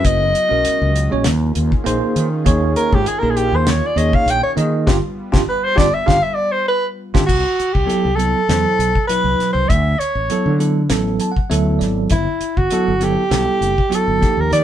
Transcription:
Already playing: F#3 G#3 B3 C#4 E4 F#4 B4
0.04 F#1 F#4 D#5, kick, closed hi-hat
0.35 closed hi-hat
0.49 B1 G#3 C#4 F#4 A#4
0.65 closed hi-hat
0.82 C#2
0.96 closed hi-hat
1.10 A#1 G#3 C#4 F#4 C#5
1.23 D#2 D#3 C#4 F4 G#4, snare, closed hi-hat
1.55 D#2, closed hi-hat
1.72 kick
1.84 A#1 A#3 D#4 G#4 C5, closed hi-hat
2.16 D#3, closed hi-hat
2.45 D#2 A#3 D#4 G#4 C#5, kick, closed hi-hat
2.76 A#4, closed hi-hat
2.93 G#2 G4, kick
3.06 G#4, muted fretless electric bass stroke, closed hi-hat
3.18 A#3 A#4
3.22 A#1 D#4 G#4 A#4
3.30 G#4
3.36 G4, closed hi-hat
3.52 D#2 C5
3.67 C#5, snare, closed hi-hat
3.86 D5
3.96 D#2 A#3 D#4 G#4 C#5 D#5, closed hi-hat
4.13 F5, kick
4.26 A#1 G5, closed hi-hat
4.43 C#5
4.56 D#3 A#3 D#4 G#4 D#5, closed hi-hat
4.86 G1 G3 B3 D4 F4 G4, kick, snare
5.32 G1 D4 F4 G4, kick, snare
5.48 B4
5.64 C5
5.76 G1 D4 F4 G4 D5, kick, snare
5.94 E5
6.06 G1 D4 F4 G4 F5, kick, snare
6.23 E5
6.34 D5
6.52 C5
6.68 B4
7.14 G1 D4 F4 G4, kick, snare
7.26 C2 F#4, kick, crash
7.60 muted fretless electric bass stroke, closed hi-hat
7.73 C2 G4, kick
7.86 F#3 B3 E4 A4, closed hi-hat
8.05 C2
8.16 F#3 B3 E4 A4, closed hi-hat
8.49 E2 B2 F#3 E4 C5, snare, closed hi-hat
8.79 B1, closed hi-hat
8.95 kick
9.07 B2 F#3 E4 B4, muted fretless electric bass stroke, closed hi-hat
9.24 C2
9.39 muted fretless electric bass stroke, snare, closed hi-hat
9.52 C2 C5
9.69 D2 E5, kick, closed hi-hat
9.99 C#5, muted fretless electric bass stroke, closed hi-hat
10.15 A1
10.29 F#3 B3 E4 A4, closed hi-hat
10.46 D3
10.58 F#3 B3 E4 A4, closed hi-hat
10.89 A1 F#3 B3 E4 A4, snare, closed hi-hat
11.20 A5, closed hi-hat
11.32 F#5
11.36 kick
11.50 D2 F#3 B3 E4 A4 E5, closed hi-hat
11.79 G#1 D5, snare, closed hi-hat
12.10 G1 E4, kick, closed hi-hat
12.40 muted fretless electric bass stroke, closed hi-hat
12.57 G1 F#4, kick
12.71 F#3 B3 E4 A4, muted fretless electric bass stroke, closed hi-hat
12.88 G1
12.99 F#3 B3 E4 G4 A4, closed hi-hat
13.29 B1 G3 B3 E4 A4, snare, closed hi-hat
13.61 F#1, closed hi-hat
13.78 kick
13.89 F#3 B3 E4 F#4, muted fretless electric bass stroke, closed hi-hat
13.95 A4
14.07 G1
14.21 F3 A#3 D#4 G4, muted fretless electric bass stroke, kick, snare, closed hi-hat
14.37 D#2 A#4
14.52 D#3 D5, closed hi-hat

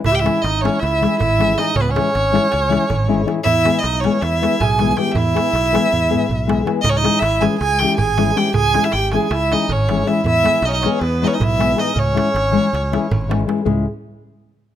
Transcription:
0.04 C#2 E4 E5, darbuka dum
0.12 G4 G5
0.16 E5, darbuka tek
0.22 E3 G#3 C#4 E4
0.26 E4 G#4, darbuka tek
0.36 darbuka tek
0.42 G#1 D#4 D#5, darbuka tek
0.54 darbuka tek
0.61 E3 G#3 C#4 E4 G#4 C#5
0.65 darbuka tek
0.74 darbuka tek
0.80 C#2 E4 E5, darbuka tek
0.93 darbuka tek
1.01 E3 G#3 C#4 E4 G#4, darbuka tek
1.19 G#1 E4 E5, darbuka dum
1.39 E3 G#3 C#4 E4 G#4, darbuka tek
1.57 E3 G#3 C#4 D#4 E4 G#4 D#5, darbuka tek
1.75 C#2 C#4 C#5, darbuka dum
1.81 B3 B4
1.86 C#4, darbuka tek
1.91 E3 C#5
1.96 G#3 C#4 E4 G#4, darbuka tek
2.15 G#1, darbuka tek
2.32 E3 G#3 C#4 E4 G#4, darbuka tek
2.44 darbuka tek
2.52 C#2, darbuka tek
2.63 darbuka tek
2.69 E3 G#3 C#4 E4 G#4, darbuka tek
2.90 G#1, darbuka dum
3.08 E3 G#3 C#4 E4 G#4
3.26 E3 G#3 C#4 E4 G#4, darbuka tek
3.43 E2 E4 E5, darbuka dum
3.64 E3 G#3 B3 E4 G#4, darbuka tek
3.74 darbuka tek
3.79 D#5
3.83 B1 D#4, darbuka tek
3.94 darbuka tek
4.00 E3 G#3 B3 C#5
4.04 C#4 E4 G#4, darbuka tek
4.13 darbuka tek
4.21 E2 E4 E5, darbuka tek
4.41 E3 G#3 B3 E4 G#4, darbuka tek
4.60 B1 G#4 G#5, darbuka dum
4.79 E3 G#3 B3 E4 G#4, darbuka tek
4.91 G#5
4.96 E3 G#3 B3 E4 G4 G#4 G5, darbuka tek
5.13 E2 E4 E5, darbuka dum
5.26 darbuka tek
5.34 E3 G#3 B3 E4 G#4, darbuka tek
5.46 darbuka tek
5.53 B1, darbuka tek
5.65 darbuka tek
5.72 E3 G#3 B3 E4 G#4, darbuka tek
5.84 darbuka tek
5.92 E2, darbuka dum
6.09 E3 G#3 B3 E4 G#4
6.13 darbuka dum
6.29 B1, darbuka dum
6.47 E3 G#3 B3 E4 G#4, darbuka tek
6.65 E3 G#3 B3 E4 G#4, darbuka tek
6.82 C#2 D#4 D#5, darbuka dum
6.89 C#4 C#5
6.95 D#4 D#5, darbuka tek
7.02 E3 G#3 C#4 E4 G#4, darbuka tek
7.14 darbuka tek
7.19 G#1 E4 E5, darbuka tek
7.40 E3 G#3 C#4 E4 G#4 G#5, darbuka tek
7.52 darbuka tek
7.59 C#2 G#4 G#5, darbuka tek
7.79 E3 G#3 C#4 G4 G#4 G5, darbuka tek
7.83 E4
7.97 G#1 G#5, darbuka dum
8.01 G#4
8.18 E3 G#3 C#4 E4 G#4, darbuka tek
8.35 E3 G#3 C#4 E4 G4 G#4 G5, darbuka tek
8.54 C#2 G#4 G#5, darbuka dum
8.64 darbuka tek
8.73 E3 G#3 C#4 E4 G#4, darbuka tek
8.84 E4 E5, darbuka tek
8.92 G#1 G4 G5, darbuka tek
9.02 darbuka tek
9.12 E3 G#3 C#4 E4 G#4 G#5, darbuka tek
9.22 darbuka tek
9.31 C#2 E4 E5, darbuka tek
9.51 E3 G#3 C#4 D#4 E4 G#4 D#5, darbuka tek
9.69 G#1 C#4 C#5, darbuka dum
9.89 E3 G#3 C#4 E4 G#4, darbuka tek
10.06 E3 G#3 C#4 E4 G#4 E5, darbuka tek
10.24 E2 E4 E5, darbuka dum
10.34 darbuka tek
10.42 E3 G#3 B3 E4 G#4, darbuka tek
10.54 darbuka tek
10.62 B1 D#4 D#5, darbuka tek
10.66 C#4 C#5
10.73 D#4 D#5, darbuka tek
10.82 E3 G#3 B3 C#4 C#5, darbuka tek
10.86 G#4
10.92 darbuka tek
10.99 E2 B4, darbuka tek
11.03 B3
11.12 darbuka tek
11.22 E3 G#3 B3 C#4 D#4 E4 G#4 D#5
11.27 C#5
11.33 D#4 D#5
11.40 B1 E4 E5, darbuka dum
11.58 E3 G#3 B3 E4 G#4, darbuka tek
11.74 E3 G#3 B3 D#4 E4 G#4, darbuka tek
11.79 D#5
11.94 C#2 C#4, darbuka dum
11.99 C#5
12.13 E3 G#3 C#4 E4 G#4
12.17 darbuka tek
12.27 darbuka tek
12.34 G#1, darbuka tek
12.46 darbuka tek
12.51 E3 G#3 C#4 E4 G#4
12.73 C#2, darbuka tek
12.84 darbuka tek
12.92 E3 G#3 C#4 E4 G#4, darbuka tek
13.11 G#1, darbuka dum
13.21 darbuka tek
13.29 E3 G#3 C#4 E4 G#4, darbuka tek
13.40 darbuka tek
13.46 E3 G#3 C#4 E4 G#4, darbuka tek
13.58 darbuka tek
13.65 C#2 G#3 C#4 E4 G#4, darbuka dum

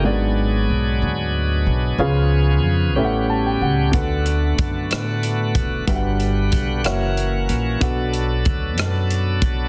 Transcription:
Already playing: A#4 G5
0.03 G#1 G#2 F#3 A#3 B3 D4 F#4 G#4 D5
0.10 B3
0.70 B1
1.02 D2
1.66 B1
1.98 C#2 C#3 F3 C#4 F4 G#4 B4 F5
2.63 F2
2.95 A1 A2 G3 C#4 G4 A4 B4 E5
3.04 F#5
3.30 A5
3.46 G5
3.61 C#2 F#5
3.92 D2 D3 A3 B3 D4 F#4 A4 B4 F#5, kick, closed hi-hat
4.26 closed hi-hat
4.58 F#2, kick, closed hi-hat
4.91 A2, cross-stick, closed hi-hat
5.23 closed hi-hat
5.55 E1, kick, closed hi-hat
5.87 G1 G2 D3 G3 D4 F#4 G4 B4 E5 F#5, kick, closed hi-hat
5.95 F#5
6.20 closed hi-hat
6.52 B1, kick, closed hi-hat
6.84 F#1 E3 A#3 C#4 E4 F#4 A#4 C#5 F#5, cross-stick, closed hi-hat
7.17 closed hi-hat
7.49 A#1, closed hi-hat
7.80 B1 B2 F#3 B3 D4 F#4 A4 B4 F#5, kick, closed hi-hat
8.13 closed hi-hat
8.45 D2, kick, closed hi-hat
8.78 F#2, cross-stick, closed hi-hat
9.11 closed hi-hat
9.42 B1, kick, closed hi-hat

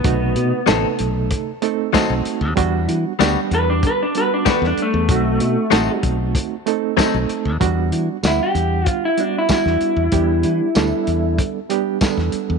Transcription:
Already playing: B3
0.04 B1 C3 A3 D#4 F#4, kick, closed hi-hat
0.36 B2, closed hi-hat
0.66 A1 C3 F#3 A3 C4 D#4 A4, snare, closed hi-hat, tambourine
0.99 B1, closed hi-hat
1.31 kick, closed hi-hat
1.62 A3 C4 D#4 A4, closed hi-hat
1.93 F#3 A3 C4 D#4 F#4 A4, kick, snare, closed hi-hat, tambourine
2.10 B1
2.25 muted fingered electric bass stroke, closed hi-hat
2.41 D#2
2.56 E2 G3 B3 D4 F#4, kick, closed hi-hat
2.88 E3, closed hi-hat
3.19 D2 G3 B3 D4 F#4 G4, snare, closed hi-hat, tambourine
3.51 E2 B4, closed hi-hat
3.70 D4
3.83 B4, kick, closed hi-hat
4.03 D4
4.15 G3 B3 D4 F#4 B4, closed hi-hat
4.34 D4
4.45 G3 B3 D4 F#4 A4, kick, snare, closed hi-hat, tambourine
4.50 B4
4.62 E2, snare
4.67 D4
4.77 muted fingered electric bass stroke, closed hi-hat
4.82 A3
4.94 E2
5.09 B1 A3 C4 D#4 F#4, kick, closed hi-hat
5.40 B2, closed hi-hat
5.71 A1 F#3 A3 C4 D#4 F#4 A4, snare, closed hi-hat, tambourine
6.03 B1, kick, closed hi-hat
6.35 kick, closed hi-hat
6.66 A3 C4 D#4 A4, closed hi-hat
6.97 F#3 A3 C4 D#4 A4, kick, snare, closed hi-hat, tambourine
7.14 B1
7.29 muted fingered electric bass stroke, closed hi-hat
7.45 D#2
7.60 E2 G3 B3 D4 F#4, kick, closed hi-hat
7.92 E3, closed hi-hat
8.23 D2 G3 B3 D4 F#5, snare, closed hi-hat, tambourine
8.27 E4
8.43 G4
8.55 E2, closed hi-hat
8.86 F4, kick, closed hi-hat
9.05 E4
9.18 G3 B3 D4 F#4, closed hi-hat
9.38 E4
9.49 G3 B3 D4 F#4, kick, snare, closed hi-hat, tambourine
9.54 E4
9.66 E2, snare
9.81 muted fingered electric bass stroke, closed hi-hat
9.97 E2
10.12 E2 G3 B3 D4 G4, kick, closed hi-hat
10.43 E3, closed hi-hat
10.75 D2 G3 B3 D4 A4, snare, closed hi-hat, tambourine
11.07 E2, closed hi-hat
11.38 kick, closed hi-hat
11.70 G3 B3 D4 G4, closed hi-hat
12.01 G3 B3 D4 A4, kick, snare, closed hi-hat, tambourine
12.17 E2, snare
12.32 muted fingered electric bass stroke, closed hi-hat
12.50 E2

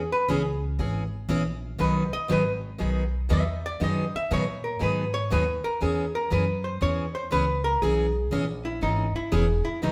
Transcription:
Already playing: E2 G#4
0.12 B4
0.28 C#2 E3 B3 C#4 G#4
0.79 G#1 E3 B3 C#4 G#4
1.29 A#1 E3 B3 C#4 G#4
1.78 B1 B2 D#3 F#3 B3 D#4 G#4 B4
2.13 D#5, muted upright bass stroke
2.28 G#1 B2 D#3 F#3 B3 D#4 G#4 B4
2.78 B1 B2 D#3 F#3 B3 D#4 G#4
3.29 E2 B2 D#3 F#3 B3 D#4 G#4 E5
3.66 D5
3.80 F#2 B2 D#3 F#3 B3 D#4 G#4 D#5
4.15 E5, muted upright bass stroke
4.31 A#2 B2 D#3 F#3 B3 D#4 G#4 C#5
4.64 A#4
4.79 G#2 B2 D#3 F#3 B3 D#4 G#4 B4
5.14 C#5
5.30 D#2 B2 D#3 F#3 B3 D#4 G#4 B4
5.64 A#4, muted upright bass stroke
5.81 E2 E3 B3 C#4 G#4
6.15 A#4
6.30 F#2 E3 B3 C#4 G#4 B4
6.64 C5
6.81 E2 E3 B3 C#4 G#4 C#5
7.15 C5
7.31 C#2 E3 B3 C#4 G#4 B4
7.64 A#4
7.82 B1 E3 B3 C#4 G#4
8.31 A#1 E3 B3 C#4 G#4
8.65 E4
8.81 G#1 E3 B3 C#4 D#4 G#4
9.16 E4, muted upright bass stroke
9.32 E1 E3 B3 C#4 G#4
9.65 E4, muted upright bass stroke
9.82 B1 B2 D#3 F#3 B3 D#4 G#4

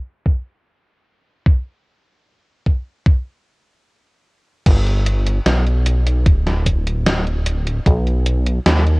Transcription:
0.26 kick
1.46 kick
2.66 kick
3.06 kick
4.66 G1, kick, closed hi-hat, crash
4.87 closed hi-hat
5.06 closed hi-hat
5.27 closed hi-hat
5.46 B1, snare, closed hi-hat
5.67 closed hi-hat
5.86 closed hi-hat
6.07 closed hi-hat
6.26 D1, kick, closed hi-hat
6.47 snare, closed hi-hat
6.66 kick, closed hi-hat
6.87 closed hi-hat
7.06 snare, closed hi-hat
7.27 closed hi-hat
7.46 closed hi-hat
7.67 closed hi-hat
7.86 B1, kick, closed hi-hat
8.07 closed hi-hat
8.26 closed hi-hat
8.46 closed hi-hat
8.66 D#2, snare, closed hi-hat
8.87 closed hi-hat

